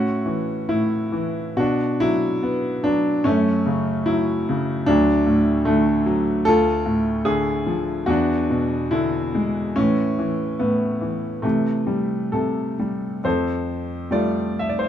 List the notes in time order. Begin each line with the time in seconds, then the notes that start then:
Already playing: A2 C#4 F#4
0.26 E3
0.69 A2 E4
1.12 E3
1.57 B2 D4 F#4
2.00 F#3 E4
2.43 B3
2.84 F#3 D4
3.24 F#2 A3 C#4
3.66 C#3
4.06 F#3 E4
4.49 C#3
4.86 D2 F#3 D4
5.27 A2
5.65 D3 A3
6.06 F#3
6.45 D2 F4 A4
6.86 A2
7.25 D3 G#4
7.66 F3
8.06 E2 D4 F#4
8.50 B2
8.91 D3 E4
9.35 G#3
9.76 A2 E3 C#4
10.19 E3
10.59 A2 B3
11.01 E3
11.42 C3 E3 A3
11.87 G3
12.32 C3 A4
12.79 G3
13.24 F2 A4 C5
14.11 G3 A3 F4 D5
14.59 E5
14.69 D5
14.79 C5